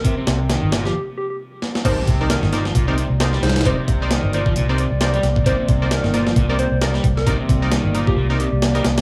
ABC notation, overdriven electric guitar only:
X:1
M:4/4
L:1/16
Q:"Swing 16ths" 1/4=133
K:Cm
V:1 name="Overdriven electric guitar" clef=bass
C, C,3 E,2 B,, F, z8 | C, C,3 E,2 B,, F, B,, C, C, z2 G, z2 | C, C,3 E,2 B,, F, B,, C, C, z2 G, z2 | C, C,3 E,2 B,, F, B,, C, C, z2 G, z2 |
C, C,3 E,2 B,, F, B,, C, C, z2 G, z2 |]